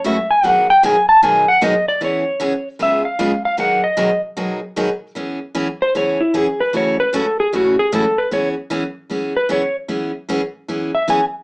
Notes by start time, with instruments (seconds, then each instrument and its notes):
0.04 steel-string acoustic guitar F#2 C#3 E3 A3 C#4 F#4, electric slide guitar E5
0.31 electric slide guitar G#5
0.43 steel-string acoustic guitar B2 D#3 F#3 B3 D#4 G#4, electric slide guitar F#5
0.70 electric slide guitar G5
0.83 steel-string acoustic guitar B2 D#3 F#3 B3 D#4 G#4, electric slide guitar G#5
1.09 electric slide guitar A5
1.22 steel-string acoustic guitar B2 D#3 F#3 B3 D#4 G#4, electric slide guitar G#5
1.48 electric slide guitar F#5
1.61 steel-string acoustic guitar B2 D#3 F#3 B3 D#4 G#4, electric slide guitar D#5
1.88 electric slide guitar D5
2.01 steel-string acoustic guitar E3 B3 C#4 G#4, electric slide guitar C#5
2.40 steel-string acoustic guitar E3 B3 C#4 G#4
2.79 steel-string acoustic guitar C#3 G#3 B3 F4 G#4, electric slide guitar E5
3.05 electric slide guitar F5
3.19 steel-string acoustic guitar C#3 G#3 B3 F4 G#4
3.45 electric slide guitar F5
3.57 steel-string acoustic guitar B2 D#3 F#3 B3 D#4 G#4, electric slide guitar F#5
3.84 electric slide guitar D#5
3.97 steel-string acoustic guitar B2 D#3 F#3 B3 D#4 G#4
4.37 steel-string acoustic guitar B2 D#3 F#3 B3 D#4 G#4
4.76 steel-string acoustic guitar B2 D#3 F#3 B3 D#4 G#4
5.15 steel-string acoustic guitar E3 B3 C#4 G#4
5.55 steel-string acoustic guitar E3 B3 C#4 G#4
5.82 electric slide guitar C5
5.95 steel-string acoustic guitar E3 B3 C#4 G#4, electric slide guitar C#5
6.21 electric slide guitar E4
6.34 steel-string acoustic guitar E3 B3 C#4 G#4, electric slide guitar G#4
6.60 electric slide guitar B4
6.73 steel-string acoustic guitar A2 C#3 E3 A3 C#4 F#4, electric slide guitar C#5
7.00 electric slide guitar B4
7.13 steel-string acoustic guitar A2 C#3 E3 A3 C#4 F#4, electric slide guitar A4
7.40 electric slide guitar G#4
7.53 steel-string acoustic guitar A2 C#3 E3 A3 C#4 F#4, electric slide guitar F#4
7.79 electric slide guitar G#4
7.92 steel-string acoustic guitar A2 C#3 E3 A3 C#4 F#4, electric slide guitar A4
8.18 electric slide guitar B4
8.31 steel-string acoustic guitar E3 B3 C#4 G#4, electric slide guitar C#5
8.70 steel-string acoustic guitar E3 B3 C#4 G#4
9.10 steel-string acoustic guitar E3 B3 C#4 G#4
9.37 electric slide guitar B4
9.49 steel-string acoustic guitar E3 B3 C#4 G#4, electric slide guitar C#5
9.88 steel-string acoustic guitar E3 B3 C#4 G#4
10.29 steel-string acoustic guitar E3 B3 C#4 G#4
10.68 steel-string acoustic guitar E3 B3 C#4 G#4
10.95 electric slide guitar E5
11.08 steel-string acoustic guitar E3 B3 C#4 G#4, electric slide guitar G#5